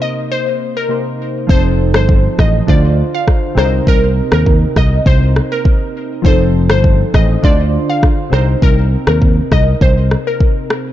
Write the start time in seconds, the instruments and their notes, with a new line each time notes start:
Already playing: synth keys C3 A#3 D#4 C5
0.02 synth pluck D#5
0.32 synth pluck C5
0.77 synth pluck A#4
0.89 synth keys C3 A#3 D#4 C5
1.47 fingered electric bass F1, synth keys F3 C4 D#4, synth pluck C5, kick
1.52 synth keys A4
1.94 fingered electric bass G1, synth pluck C5, cross-stick
2.09 kick
2.39 fingered electric bass A1, synth pluck D#5, kick, cross-stick
2.67 fingered electric bass D2, synth keys D3 D4 F4 C5, synth pluck D5, kick
3.14 synth pluck F5
3.28 kick, cross-stick
3.55 fingered electric bass C2, synth keys C3 C4 D4, synth pluck C5, cross-stick
3.60 synth keys A#4
3.65 synth keys D#4
3.87 fingered electric bass C2, synth pluck A#4, kick
4.32 fingered electric bass D#2, synth pluck A#4, cross-stick
4.46 kick
4.76 fingered electric bass C2, synth pluck D#5, kick, cross-stick
5.06 fingered electric bass C2, synth pluck C5, kick
5.36 cross-stick
5.52 synth pluck A#4
5.65 kick
6.22 fingered electric bass F1, synth keys F3 C4 D#4, synth pluck C5, kick
6.27 synth keys A4
6.70 fingered electric bass G1, synth pluck C5, cross-stick
6.84 kick
7.14 fingered electric bass A1, synth pluck D#5, kick, cross-stick
7.42 fingered electric bass D2, synth keys D3 D4 F4 C5, synth pluck D5, kick
7.90 synth pluck F5
8.03 kick, cross-stick
8.30 fingered electric bass C2, synth keys C3 C4 D#4, synth pluck C5, cross-stick
8.35 synth keys A#4
8.62 fingered electric bass C2, synth pluck A#4, kick
9.07 fingered electric bass D#2, synth pluck A#4, cross-stick
9.22 kick
9.52 fingered electric bass C2, synth pluck D#5, kick, cross-stick
9.81 fingered electric bass C2, synth pluck C5, kick
10.11 cross-stick
10.27 synth pluck A#4
10.40 kick
10.70 cross-stick